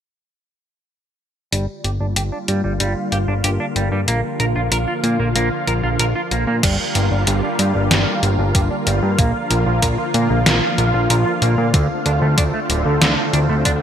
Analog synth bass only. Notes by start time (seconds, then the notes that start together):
1.52 G1
1.84 G1
2.00 G1
2.16 G1
2.48 G2
2.64 G1
2.80 G1
3.12 G1
3.28 G1
3.44 G1
3.76 G1
3.92 G2
4.08 A#1
4.40 A#1
4.56 A#1
4.72 A#1
5.03 A#2
5.20 A#1
5.35 A#1
5.67 A#1
5.83 A#1
5.99 A#1
6.31 A#1
6.47 A#2
6.63 G1
6.95 G1
7.11 G1
7.27 G1
7.59 G2
7.75 G1
7.91 G1
8.23 G1
8.39 G1
8.55 G1
8.87 G1
9.03 G2
9.19 A#1
9.50 A#1
9.66 A#1
9.82 A#1
10.14 A#2
10.30 A#1
10.46 A#1
10.78 A#1
10.94 A#1
11.10 A#1
11.42 A#1
11.58 A#2
11.74 D2
12.06 D2
12.22 D2
12.38 D2
12.70 D1
12.85 D2
13.01 D2
13.33 D2
13.49 D2
13.65 D2